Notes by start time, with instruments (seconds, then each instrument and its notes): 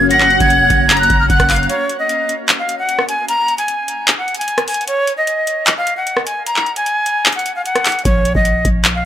Already playing: 808-style bass F#1, tine electric piano F#3 A#3 C#4, ambient pad A#3 C#4 F#4 C#5
0.10 808-style bass G#1, violin section F#5, flute A#6, closed hi-hat
0.20 clap
0.25 808-style bass F#1
0.30 closed hi-hat
0.40 808-style bass F#1, flute G#6, kick, closed hi-hat
0.50 closed hi-hat
0.60 808-style bass F1
0.70 808-style bass F#1, kick, closed hi-hat
0.90 violin section A#5, clap, closed hi-hat
0.97 flute F#6, closed hi-hat
1.03 closed hi-hat
1.10 808-style bass F#1, kick, closed hi-hat
1.20 flute F6
1.30 808-style bass F#1, violin section F#5, flute F#6, kick, closed hi-hat
1.40 kick, cross-stick, closed hi-hat
1.49 violin section F5, clap, closed hi-hat, open hi-hat
1.56 closed hi-hat
1.63 closed hi-hat
1.69 flute C#5, closed hi-hat
1.89 closed hi-hat
1.99 flute D#5
2.09 closed hi-hat
2.29 closed hi-hat
2.49 clap, closed hi-hat
2.59 flute F5
2.69 closed hi-hat
2.79 flute F#5
2.89 closed hi-hat
2.99 cross-stick
3.09 flute G#5, closed hi-hat
3.28 flute A#5, closed hi-hat
3.48 closed hi-hat
3.58 flute G#5, closed hi-hat
3.68 closed hi-hat
3.88 closed hi-hat
4.08 clap, closed hi-hat
4.18 flute F#5
4.28 closed hi-hat
4.34 flute G#5, closed hi-hat
4.41 closed hi-hat
4.48 closed hi-hat
4.58 cross-stick, closed hi-hat
4.68 flute G#5, closed hi-hat, open hi-hat
4.74 closed hi-hat
4.81 closed hi-hat
4.87 flute C#5, closed hi-hat
5.07 closed hi-hat
5.17 flute D#5
5.27 closed hi-hat
5.47 closed hi-hat
5.67 clap, closed hi-hat
5.78 flute F5
5.87 closed hi-hat
5.97 flute F#5
6.07 closed hi-hat
6.17 cross-stick
6.26 flute G#5, closed hi-hat
6.46 flute A#5, closed hi-hat
6.56 clap
6.66 closed hi-hat
6.76 flute G#5, closed hi-hat
6.86 closed hi-hat
7.06 closed hi-hat
7.26 clap, closed hi-hat
7.32 flute F#5, closed hi-hat
7.39 closed hi-hat
7.46 closed hi-hat
7.56 flute F5
7.65 flute F#5, closed hi-hat
7.75 cross-stick, closed hi-hat
7.85 clap, closed hi-hat, open hi-hat
7.92 closed hi-hat
7.99 closed hi-hat
8.05 808-style bass A#1, flute C#5, kick, closed hi-hat
8.25 closed hi-hat
8.35 808-style bass A#1, flute D#5, kick
8.45 closed hi-hat
8.65 808-style bass A#1, kick, closed hi-hat
8.85 clap, closed hi-hat
8.95 flute F5